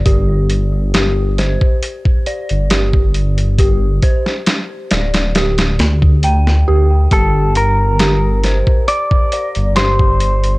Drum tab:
HH |x-x-x-x-x-xxx-xx|x-x-x-xxxxx-x---|x-x-x-x-x-xxx-xx|
SD |----o-o-----o---|---oo-ooooo--o--|----o-o-----o---|
BD |o------o-o---o--|o-o--------o----|o------o-o---o--|